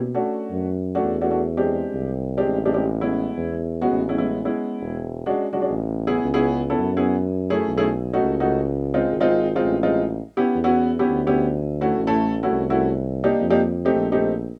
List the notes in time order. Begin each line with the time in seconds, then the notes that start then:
Already playing: B2
0.14 A3 C#4 D4 F#4
0.51 F#2
0.95 A3 C#4 D4 F#4
1.04 E2
1.21 A3 C#4 D4 F#4
1.30 A3 C#4 D4 F#4
1.57 G#3 C4 D4 G4
1.93 C2
2.37 G#3 C4 D4 G4
2.47 A1
2.65 G#3 C4 D4 G4
2.74 G#3 C4 D4 G4
3.01 G#3 B3 C#4 E4
3.37 E2
3.81 G#3 B3 C#4 F#4
3.91 A1
4.09 G#3 B3 C#4 E4
4.18 G#3 B3 C#4 E4
4.45 G#3 B3 C#4 E4
4.80 E1
5.26 G#3 C#4 D4 F#4
5.53 G#3 C#4 D4 F#4
5.62 G#3 C#4 D4 F#4
5.70 A1
6.07 B3 C#4 E4 G#4
6.24 C#2
6.34 B3 C#4 E4 G#4
6.70 B3 C#4 E4 A4
6.78 F#2
6.97 B3 C#4 E4 G#4
7.50 A3 C#4 E4 G#4
7.68 B1
7.77 A3 C#4 E4 G#4
8.13 A3 C#4 D#4 F#4
8.22 C#2
8.40 A3 C#4 D#4 F#4
8.94 G#3 C4 D#4 F4
9.11 G#1
9.20 G#3 C4 D#4 F4
9.56 G#3 C4 D#4 F4
9.65 A1
9.83 G#3 C4 D#4 F4
10.37 B3 C#4 E4 G4
10.55 E2
10.64 B3 C#4 E4 F#4
10.99 B3 C#4 E4 G4
11.08 D2
11.27 B3 C#4 E4 G4
11.81 A3 C#4 E4 F#4
11.98 A1
12.07 A3 C#4 E4 A4
12.43 A3 C#4 E4 F#4
12.51 C2
12.70 A3 C#4 E4 F#4
13.24 A#3 D4 D#4 G4
13.41 F2
13.50 A#3 D4 D#4 G4
13.85 A3 C4 D#4 G4
13.94 A#1
14.12 A3 C4 D#4 G4